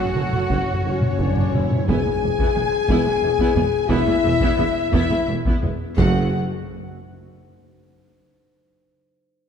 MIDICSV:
0, 0, Header, 1, 12, 480
1, 0, Start_track
1, 0, Key_signature, 3, "minor"
1, 0, Tempo, 680272
1, 1331, Time_signature, 6, 3, 24, 8
1, 3236, Tempo, 696864
1, 6613, End_track
2, 0, Start_track
2, 0, Title_t, "Flute section"
2, 0, Program_c, 0, 73
2, 0, Note_on_c, 0, 78, 98
2, 586, Note_off_c, 0, 78, 0
2, 588, Note_on_c, 0, 73, 93
2, 1298, Note_off_c, 0, 73, 0
2, 1324, Note_on_c, 0, 80, 118
2, 2547, Note_off_c, 0, 80, 0
2, 2745, Note_on_c, 0, 76, 127
2, 3470, Note_off_c, 0, 76, 0
2, 3483, Note_on_c, 0, 76, 118
2, 3715, Note_off_c, 0, 76, 0
2, 4200, Note_on_c, 0, 78, 110
2, 4466, Note_off_c, 0, 78, 0
2, 6613, End_track
3, 0, Start_track
3, 0, Title_t, "Violin section"
3, 0, Program_c, 1, 48
3, 0, Note_on_c, 1, 78, 92
3, 583, Note_off_c, 1, 78, 0
3, 602, Note_on_c, 1, 73, 89
3, 1305, Note_off_c, 1, 73, 0
3, 1335, Note_on_c, 1, 80, 113
3, 2747, Note_on_c, 1, 76, 127
3, 2756, Note_off_c, 1, 80, 0
3, 3468, Note_off_c, 1, 76, 0
3, 3476, Note_on_c, 1, 76, 113
3, 3711, Note_off_c, 1, 76, 0
3, 4206, Note_on_c, 1, 78, 107
3, 4469, Note_off_c, 1, 78, 0
3, 6613, End_track
4, 0, Start_track
4, 0, Title_t, "Violin section"
4, 0, Program_c, 2, 48
4, 0, Note_on_c, 2, 73, 110
4, 0, Note_on_c, 2, 78, 82
4, 571, Note_off_c, 2, 73, 0
4, 598, Note_off_c, 2, 78, 0
4, 603, Note_on_c, 2, 73, 93
4, 1306, Note_off_c, 2, 73, 0
4, 1331, Note_on_c, 2, 80, 118
4, 2743, Note_on_c, 2, 76, 127
4, 2754, Note_off_c, 2, 80, 0
4, 3455, Note_off_c, 2, 76, 0
4, 3477, Note_on_c, 2, 76, 121
4, 3712, Note_off_c, 2, 76, 0
4, 4194, Note_on_c, 2, 78, 108
4, 4463, Note_off_c, 2, 78, 0
4, 6613, End_track
5, 0, Start_track
5, 0, Title_t, "Trumpet"
5, 0, Program_c, 3, 56
5, 0, Note_on_c, 3, 66, 105
5, 1087, Note_off_c, 3, 66, 0
5, 6613, End_track
6, 0, Start_track
6, 0, Title_t, "French horn section"
6, 0, Program_c, 4, 60
6, 0, Note_on_c, 4, 57, 82
6, 0, Note_on_c, 4, 61, 104
6, 563, Note_off_c, 4, 61, 0
6, 568, Note_off_c, 4, 57, 0
6, 584, Note_on_c, 4, 61, 104
6, 1296, Note_off_c, 4, 61, 0
6, 1336, Note_on_c, 4, 68, 111
6, 2743, Note_on_c, 4, 64, 127
6, 2756, Note_off_c, 4, 68, 0
6, 3469, Note_off_c, 4, 64, 0
6, 3488, Note_on_c, 4, 64, 127
6, 3718, Note_off_c, 4, 64, 0
6, 4206, Note_on_c, 4, 66, 110
6, 4414, Note_off_c, 4, 66, 0
6, 6613, End_track
7, 0, Start_track
7, 0, Title_t, "Viola section"
7, 0, Program_c, 5, 48
7, 0, Note_on_c, 5, 69, 79
7, 1, Note_on_c, 5, 61, 63
7, 48, Note_off_c, 5, 61, 0
7, 122, Note_on_c, 5, 61, 63
7, 169, Note_off_c, 5, 61, 0
7, 246, Note_on_c, 5, 61, 57
7, 292, Note_off_c, 5, 61, 0
7, 362, Note_on_c, 5, 61, 95
7, 472, Note_off_c, 5, 61, 0
7, 553, Note_off_c, 5, 69, 0
7, 611, Note_on_c, 5, 61, 83
7, 831, Note_off_c, 5, 61, 0
7, 852, Note_on_c, 5, 62, 89
7, 1088, Note_off_c, 5, 62, 0
7, 1095, Note_on_c, 5, 64, 81
7, 1321, Note_off_c, 5, 64, 0
7, 1330, Note_on_c, 5, 59, 99
7, 1330, Note_on_c, 5, 64, 96
7, 1442, Note_off_c, 5, 59, 0
7, 1442, Note_off_c, 5, 64, 0
7, 1452, Note_on_c, 5, 56, 58
7, 1454, Note_on_c, 5, 59, 74
7, 1500, Note_off_c, 5, 56, 0
7, 1501, Note_off_c, 5, 59, 0
7, 1574, Note_on_c, 5, 56, 73
7, 1578, Note_on_c, 5, 52, 75
7, 1621, Note_off_c, 5, 56, 0
7, 1624, Note_off_c, 5, 52, 0
7, 1690, Note_on_c, 5, 64, 92
7, 1691, Note_on_c, 5, 59, 105
7, 1799, Note_off_c, 5, 59, 0
7, 1800, Note_off_c, 5, 64, 0
7, 1807, Note_on_c, 5, 56, 68
7, 1807, Note_on_c, 5, 59, 76
7, 1855, Note_off_c, 5, 56, 0
7, 1855, Note_off_c, 5, 59, 0
7, 2045, Note_on_c, 5, 64, 108
7, 2047, Note_on_c, 5, 59, 114
7, 2153, Note_off_c, 5, 59, 0
7, 2155, Note_off_c, 5, 64, 0
7, 2162, Note_on_c, 5, 59, 87
7, 2163, Note_on_c, 5, 56, 79
7, 2209, Note_off_c, 5, 59, 0
7, 2210, Note_off_c, 5, 56, 0
7, 2276, Note_on_c, 5, 52, 94
7, 2280, Note_on_c, 5, 56, 94
7, 2325, Note_off_c, 5, 52, 0
7, 2327, Note_off_c, 5, 56, 0
7, 2391, Note_on_c, 5, 64, 117
7, 2394, Note_on_c, 5, 59, 122
7, 2499, Note_off_c, 5, 59, 0
7, 2504, Note_off_c, 5, 64, 0
7, 2507, Note_on_c, 5, 56, 100
7, 2508, Note_on_c, 5, 59, 104
7, 2556, Note_off_c, 5, 56, 0
7, 2557, Note_off_c, 5, 59, 0
7, 2744, Note_on_c, 5, 59, 126
7, 2747, Note_on_c, 5, 64, 127
7, 2860, Note_off_c, 5, 59, 0
7, 2861, Note_off_c, 5, 64, 0
7, 2867, Note_on_c, 5, 59, 97
7, 2869, Note_on_c, 5, 56, 90
7, 2917, Note_off_c, 5, 59, 0
7, 2918, Note_off_c, 5, 56, 0
7, 2986, Note_on_c, 5, 52, 91
7, 2986, Note_on_c, 5, 56, 87
7, 3036, Note_off_c, 5, 52, 0
7, 3036, Note_off_c, 5, 56, 0
7, 3111, Note_on_c, 5, 64, 127
7, 3112, Note_on_c, 5, 59, 127
7, 3219, Note_off_c, 5, 59, 0
7, 3226, Note_off_c, 5, 64, 0
7, 3228, Note_on_c, 5, 56, 107
7, 3228, Note_on_c, 5, 59, 93
7, 3277, Note_off_c, 5, 56, 0
7, 3277, Note_off_c, 5, 59, 0
7, 3467, Note_on_c, 5, 59, 117
7, 3470, Note_on_c, 5, 64, 120
7, 3582, Note_off_c, 5, 59, 0
7, 3584, Note_off_c, 5, 64, 0
7, 3590, Note_on_c, 5, 56, 87
7, 3590, Note_on_c, 5, 59, 88
7, 3639, Note_off_c, 5, 56, 0
7, 3639, Note_off_c, 5, 59, 0
7, 3716, Note_on_c, 5, 52, 84
7, 3718, Note_on_c, 5, 56, 86
7, 3765, Note_off_c, 5, 52, 0
7, 3766, Note_off_c, 5, 56, 0
7, 3834, Note_on_c, 5, 59, 101
7, 3836, Note_on_c, 5, 64, 105
7, 3948, Note_off_c, 5, 59, 0
7, 3949, Note_off_c, 5, 64, 0
7, 3956, Note_on_c, 5, 56, 83
7, 3957, Note_on_c, 5, 59, 83
7, 4005, Note_off_c, 5, 56, 0
7, 4006, Note_off_c, 5, 59, 0
7, 4200, Note_on_c, 5, 68, 102
7, 4204, Note_on_c, 5, 57, 109
7, 4466, Note_off_c, 5, 68, 0
7, 4469, Note_off_c, 5, 57, 0
7, 6613, End_track
8, 0, Start_track
8, 0, Title_t, "Timpani"
8, 0, Program_c, 6, 47
8, 44, Note_on_c, 6, 42, 54
8, 85, Note_off_c, 6, 42, 0
8, 93, Note_on_c, 6, 42, 54
8, 143, Note_off_c, 6, 42, 0
8, 151, Note_on_c, 6, 42, 55
8, 192, Note_off_c, 6, 42, 0
8, 200, Note_on_c, 6, 42, 59
8, 251, Note_off_c, 6, 42, 0
8, 259, Note_on_c, 6, 42, 58
8, 304, Note_off_c, 6, 42, 0
8, 313, Note_on_c, 6, 42, 62
8, 356, Note_off_c, 6, 42, 0
8, 365, Note_on_c, 6, 42, 67
8, 397, Note_off_c, 6, 42, 0
8, 405, Note_on_c, 6, 42, 69
8, 456, Note_off_c, 6, 42, 0
8, 464, Note_on_c, 6, 42, 70
8, 510, Note_off_c, 6, 42, 0
8, 518, Note_on_c, 6, 42, 76
8, 561, Note_off_c, 6, 42, 0
8, 570, Note_on_c, 6, 42, 80
8, 625, Note_off_c, 6, 42, 0
8, 635, Note_on_c, 6, 42, 82
8, 679, Note_off_c, 6, 42, 0
8, 688, Note_on_c, 6, 42, 92
8, 735, Note_off_c, 6, 42, 0
8, 743, Note_on_c, 6, 42, 85
8, 786, Note_off_c, 6, 42, 0
8, 795, Note_on_c, 6, 42, 89
8, 842, Note_off_c, 6, 42, 0
8, 850, Note_on_c, 6, 42, 94
8, 898, Note_off_c, 6, 42, 0
8, 907, Note_on_c, 6, 42, 95
8, 958, Note_off_c, 6, 42, 0
8, 966, Note_on_c, 6, 42, 104
8, 1005, Note_off_c, 6, 42, 0
8, 1013, Note_on_c, 6, 42, 107
8, 1060, Note_off_c, 6, 42, 0
8, 1068, Note_on_c, 6, 42, 113
8, 1117, Note_off_c, 6, 42, 0
8, 1126, Note_on_c, 6, 42, 112
8, 1173, Note_off_c, 6, 42, 0
8, 1182, Note_on_c, 6, 42, 112
8, 1228, Note_off_c, 6, 42, 0
8, 1236, Note_on_c, 6, 42, 115
8, 1289, Note_off_c, 6, 42, 0
8, 4190, Note_on_c, 6, 42, 126
8, 4417, Note_off_c, 6, 42, 0
8, 6613, End_track
9, 0, Start_track
9, 0, Title_t, "Cello section"
9, 0, Program_c, 7, 48
9, 0, Note_on_c, 7, 66, 107
9, 1087, Note_off_c, 7, 66, 0
9, 1329, Note_on_c, 7, 40, 96
9, 1377, Note_off_c, 7, 40, 0
9, 1449, Note_on_c, 7, 40, 74
9, 1497, Note_off_c, 7, 40, 0
9, 1566, Note_on_c, 7, 40, 72
9, 1614, Note_off_c, 7, 40, 0
9, 1680, Note_on_c, 7, 40, 107
9, 1730, Note_off_c, 7, 40, 0
9, 1799, Note_on_c, 7, 40, 74
9, 1848, Note_off_c, 7, 40, 0
9, 2040, Note_on_c, 7, 40, 114
9, 2088, Note_off_c, 7, 40, 0
9, 2154, Note_on_c, 7, 40, 88
9, 2203, Note_off_c, 7, 40, 0
9, 2274, Note_on_c, 7, 40, 86
9, 2323, Note_off_c, 7, 40, 0
9, 2394, Note_on_c, 7, 40, 124
9, 2442, Note_off_c, 7, 40, 0
9, 2508, Note_on_c, 7, 40, 90
9, 2557, Note_off_c, 7, 40, 0
9, 2750, Note_on_c, 7, 40, 126
9, 2798, Note_off_c, 7, 40, 0
9, 2871, Note_on_c, 7, 40, 96
9, 2919, Note_off_c, 7, 40, 0
9, 2987, Note_on_c, 7, 40, 99
9, 3037, Note_off_c, 7, 40, 0
9, 3116, Note_on_c, 7, 40, 127
9, 3164, Note_off_c, 7, 40, 0
9, 3233, Note_on_c, 7, 40, 94
9, 3281, Note_off_c, 7, 40, 0
9, 3469, Note_on_c, 7, 40, 120
9, 3518, Note_off_c, 7, 40, 0
9, 3593, Note_on_c, 7, 40, 97
9, 3642, Note_off_c, 7, 40, 0
9, 3711, Note_on_c, 7, 40, 86
9, 3761, Note_off_c, 7, 40, 0
9, 3837, Note_on_c, 7, 40, 111
9, 3885, Note_off_c, 7, 40, 0
9, 3952, Note_on_c, 7, 40, 69
9, 4001, Note_off_c, 7, 40, 0
9, 4196, Note_on_c, 7, 42, 104
9, 4464, Note_off_c, 7, 42, 0
9, 6613, End_track
10, 0, Start_track
10, 0, Title_t, "Double bass section"
10, 0, Program_c, 8, 48
10, 1, Note_on_c, 8, 30, 67
10, 48, Note_off_c, 8, 30, 0
10, 116, Note_on_c, 8, 30, 66
10, 164, Note_off_c, 8, 30, 0
10, 238, Note_on_c, 8, 30, 66
10, 286, Note_off_c, 8, 30, 0
10, 360, Note_on_c, 8, 30, 92
10, 407, Note_off_c, 8, 30, 0
10, 600, Note_on_c, 8, 30, 66
10, 648, Note_off_c, 8, 30, 0
10, 844, Note_on_c, 8, 30, 95
10, 893, Note_off_c, 8, 30, 0
10, 964, Note_on_c, 8, 30, 64
10, 1013, Note_off_c, 8, 30, 0
10, 1086, Note_on_c, 8, 30, 64
10, 1136, Note_off_c, 8, 30, 0
10, 1332, Note_on_c, 8, 28, 99
10, 1380, Note_off_c, 8, 28, 0
10, 1578, Note_on_c, 8, 28, 76
10, 1624, Note_off_c, 8, 28, 0
10, 1813, Note_on_c, 8, 28, 77
10, 1859, Note_off_c, 8, 28, 0
10, 2044, Note_on_c, 8, 28, 119
10, 2092, Note_off_c, 8, 28, 0
10, 2278, Note_on_c, 8, 28, 85
10, 2326, Note_off_c, 8, 28, 0
10, 2519, Note_on_c, 8, 28, 92
10, 2566, Note_off_c, 8, 28, 0
10, 2756, Note_on_c, 8, 28, 127
10, 2804, Note_off_c, 8, 28, 0
10, 3004, Note_on_c, 8, 28, 102
10, 3051, Note_off_c, 8, 28, 0
10, 3240, Note_on_c, 8, 28, 97
10, 3287, Note_off_c, 8, 28, 0
10, 3474, Note_on_c, 8, 28, 123
10, 3522, Note_off_c, 8, 28, 0
10, 3719, Note_on_c, 8, 28, 92
10, 3767, Note_off_c, 8, 28, 0
10, 3962, Note_on_c, 8, 28, 74
10, 4009, Note_off_c, 8, 28, 0
10, 4203, Note_on_c, 8, 30, 121
10, 4468, Note_off_c, 8, 30, 0
10, 6613, End_track
11, 0, Start_track
11, 0, Title_t, "Tuba"
11, 0, Program_c, 10, 58
11, 106, Note_on_c, 10, 30, 66
11, 156, Note_off_c, 10, 30, 0
11, 352, Note_on_c, 10, 30, 92
11, 401, Note_off_c, 10, 30, 0
11, 593, Note_on_c, 10, 30, 68
11, 643, Note_off_c, 10, 30, 0
11, 833, Note_on_c, 10, 30, 86
11, 884, Note_off_c, 10, 30, 0
11, 1081, Note_on_c, 10, 30, 67
11, 1131, Note_off_c, 10, 30, 0
11, 1324, Note_on_c, 10, 28, 100
11, 1373, Note_off_c, 10, 28, 0
11, 1557, Note_on_c, 10, 28, 70
11, 1607, Note_off_c, 10, 28, 0
11, 1796, Note_on_c, 10, 28, 77
11, 1845, Note_off_c, 10, 28, 0
11, 2034, Note_on_c, 10, 28, 121
11, 2083, Note_off_c, 10, 28, 0
11, 2274, Note_on_c, 10, 28, 84
11, 2322, Note_off_c, 10, 28, 0
11, 2508, Note_on_c, 10, 28, 89
11, 2557, Note_off_c, 10, 28, 0
11, 2740, Note_on_c, 10, 28, 127
11, 2791, Note_off_c, 10, 28, 0
11, 2981, Note_on_c, 10, 28, 97
11, 3032, Note_off_c, 10, 28, 0
11, 3229, Note_on_c, 10, 28, 93
11, 3278, Note_off_c, 10, 28, 0
11, 3464, Note_on_c, 10, 28, 127
11, 3514, Note_off_c, 10, 28, 0
11, 3707, Note_on_c, 10, 28, 79
11, 3757, Note_off_c, 10, 28, 0
11, 3949, Note_on_c, 10, 28, 73
11, 3999, Note_off_c, 10, 28, 0
11, 4193, Note_on_c, 10, 30, 113
11, 4407, Note_off_c, 10, 30, 0
11, 6613, End_track
12, 0, Start_track
12, 0, Title_t, "Taiko and cinematic ensemble drums"
12, 112, Note_on_c, 9, 47, 73
12, 183, Note_off_c, 9, 47, 0
12, 231, Note_on_c, 9, 47, 61
12, 301, Note_off_c, 9, 47, 0
12, 351, Note_on_c, 9, 41, 97
12, 422, Note_off_c, 9, 41, 0
12, 714, Note_on_c, 9, 47, 64
12, 785, Note_off_c, 9, 47, 0
12, 836, Note_on_c, 9, 41, 84
12, 906, Note_off_c, 9, 41, 0
12, 965, Note_on_c, 9, 47, 69
12, 1036, Note_off_c, 9, 47, 0
12, 1088, Note_on_c, 9, 47, 66
12, 1159, Note_off_c, 9, 47, 0
12, 1208, Note_on_c, 9, 47, 63
12, 1279, Note_off_c, 9, 47, 0
12, 1330, Note_on_c, 9, 41, 104
12, 1401, Note_off_c, 9, 41, 0
12, 1684, Note_on_c, 9, 41, 91
12, 1754, Note_off_c, 9, 41, 0
12, 1921, Note_on_c, 9, 37, 44
12, 1992, Note_off_c, 9, 37, 0
12, 2036, Note_on_c, 9, 41, 100
12, 2106, Note_off_c, 9, 41, 0
12, 2389, Note_on_c, 9, 41, 96
12, 2460, Note_off_c, 9, 41, 0
12, 2507, Note_on_c, 9, 45, 76
12, 2577, Note_off_c, 9, 45, 0
12, 2745, Note_on_c, 9, 41, 113
12, 2815, Note_off_c, 9, 41, 0
12, 3106, Note_on_c, 9, 41, 100
12, 3177, Note_off_c, 9, 41, 0
12, 3474, Note_on_c, 9, 41, 100
12, 3542, Note_off_c, 9, 41, 0
12, 3833, Note_on_c, 9, 41, 101
12, 3902, Note_off_c, 9, 41, 0
12, 3954, Note_on_c, 9, 45, 74
12, 4023, Note_off_c, 9, 45, 0
12, 4196, Note_on_c, 9, 41, 109
12, 4265, Note_off_c, 9, 41, 0
12, 6613, End_track
0, 0, End_of_file